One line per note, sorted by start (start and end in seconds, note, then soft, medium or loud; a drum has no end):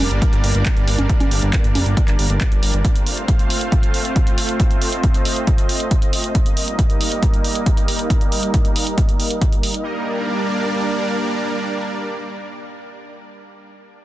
0.00 2.81 G3 medium
0.00 2.81 A#3 medium
0.00 2.81 D4 medium
0.00 2.81 A#4 medium
0.00 2.81 D5 medium
0.11 0.20 G1 medium
0.11 closed hi-hat soft
0.22 kick loud
0.22 closed hi-hat medium
0.33 0.42 G1 medium
0.33 closed hi-hat soft
0.44 0.53 G1 loud
0.44 open hi-hat loud
0.55 0.64 G1 medium
0.55 closed hi-hat medium
0.66 kick loud
0.66 clap loud
0.66 closed hi-hat medium
0.77 0.86 G1 medium
0.77 closed hi-hat soft
0.88 0.97 G1 loud
0.88 open hi-hat loud
0.98 1.08 G1 medium
0.98 closed hi-hat soft
0.98 high conga medium
1.09 kick loud
1.09 closed hi-hat medium
1.20 1.30 G1 medium
1.20 closed hi-hat soft
1.20 high conga medium
1.31 1.40 G1 loud
1.31 open hi-hat loud
1.42 1.51 G1 medium
1.42 closed hi-hat soft
1.53 kick loud
1.53 clap loud
1.53 closed hi-hat medium
1.64 1.73 G1 medium
1.64 closed hi-hat soft
1.75 1.84 F1 loud
1.75 open hi-hat loud
1.75 high conga medium
1.86 1.95 G1 medium
1.86 closed hi-hat soft
1.97 kick loud
1.97 closed hi-hat medium
2.08 2.17 G1 medium
2.08 clap soft
2.08 closed hi-hat soft
2.19 2.28 G1 loud
2.19 open hi-hat loud
2.30 2.39 G1 medium
2.30 closed hi-hat soft
2.41 kick loud
2.41 clap loud
2.41 closed hi-hat medium
2.52 2.61 G1 medium
2.52 closed hi-hat soft
2.63 2.72 G1 loud
2.63 open hi-hat loud
2.74 2.83 G1 medium
2.74 closed hi-hat soft
2.84 6.31 A3 medium
2.84 6.31 C4 medium
2.84 6.31 F4 medium
2.84 6.31 C5 medium
2.84 4.58 F5 medium
2.84 kick loud
2.84 closed hi-hat medium
2.96 closed hi-hat soft
3.06 open hi-hat loud
3.17 closed hi-hat soft
3.28 kick loud
3.28 closed hi-hat medium
3.39 closed hi-hat soft
3.50 open hi-hat loud
3.61 closed hi-hat soft
3.72 kick loud
3.72 closed hi-hat medium
3.83 closed hi-hat soft
3.94 open hi-hat medium
4.05 closed hi-hat soft
4.16 kick loud
4.16 closed hi-hat medium
4.27 closed hi-hat soft
4.38 open hi-hat loud
4.49 closed hi-hat soft
4.60 9.81 D#5 medium
4.60 kick loud
4.60 closed hi-hat medium
4.71 closed hi-hat soft
4.82 open hi-hat loud
4.92 closed hi-hat medium
5.03 kick loud
5.03 closed hi-hat medium
5.14 closed hi-hat soft
5.25 open hi-hat medium
5.36 closed hi-hat soft
5.47 kick loud
5.47 closed hi-hat medium
5.58 closed hi-hat soft
5.69 open hi-hat medium
5.80 closed hi-hat soft
5.91 kick loud
5.91 closed hi-hat medium
6.02 closed hi-hat soft
6.13 open hi-hat loud
6.24 closed hi-hat medium
6.35 9.82 G3 medium
6.35 9.82 A#3 medium
6.35 9.82 D#4 medium
6.35 9.82 A#4 medium
6.35 kick loud
6.35 closed hi-hat medium
6.46 closed hi-hat medium
6.57 open hi-hat loud
6.68 closed hi-hat medium
6.79 kick loud
6.79 closed hi-hat medium
6.90 closed hi-hat medium
7.01 open hi-hat medium
7.12 closed hi-hat medium
7.23 kick loud
7.23 closed hi-hat medium
7.34 closed hi-hat soft
7.44 open hi-hat medium
7.55 closed hi-hat medium
7.66 kick loud
7.66 closed hi-hat medium
7.77 closed hi-hat soft
7.88 open hi-hat medium
7.99 closed hi-hat soft
8.10 kick loud
8.10 closed hi-hat medium
8.21 closed hi-hat medium
8.32 open hi-hat loud
8.43 closed hi-hat medium
8.54 kick loud
8.54 closed hi-hat medium
8.65 closed hi-hat medium
8.76 open hi-hat medium
8.87 closed hi-hat medium
8.98 kick loud
8.98 closed hi-hat medium
9.09 closed hi-hat soft
9.20 open hi-hat medium
9.31 closed hi-hat medium
9.41 kick loud
9.41 closed hi-hat medium
9.52 closed hi-hat soft
9.63 open hi-hat medium
9.74 closed hi-hat soft
9.85 13.17 G3 medium
9.85 13.17 A#3 medium
9.85 13.17 D4 medium
9.85 13.17 A#4 medium
9.85 13.17 D5 medium